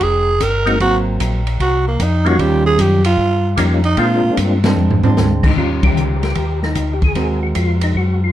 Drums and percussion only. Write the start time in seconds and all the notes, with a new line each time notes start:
0.01 kick, ride
0.40 kick, hi-hat pedal, ride
0.67 ride
0.80 kick, ride
1.20 kick, hi-hat pedal, ride
1.47 ride
1.60 kick, ride
1.99 kick, hi-hat pedal, ride
2.26 ride
2.39 kick, ride
2.79 kick, hi-hat pedal, ride
3.04 ride
3.18 kick
3.57 kick, hi-hat pedal, ride
3.84 ride
3.97 kick, ride
4.37 kick, hi-hat pedal, ride
4.64 snare, ride
4.91 floor tom
5.03 floor tom
5.17 snare, hi-hat pedal
5.43 kick, crash
5.57 kick
5.83 kick, ride
5.97 hi-hat pedal
6.23 snare, ride
6.35 kick, ride
6.63 snare
6.75 kick, hi-hat pedal, ride
7.02 kick, ride
7.15 kick, ride
7.55 kick, hi-hat pedal, ride
7.81 ride
7.95 kick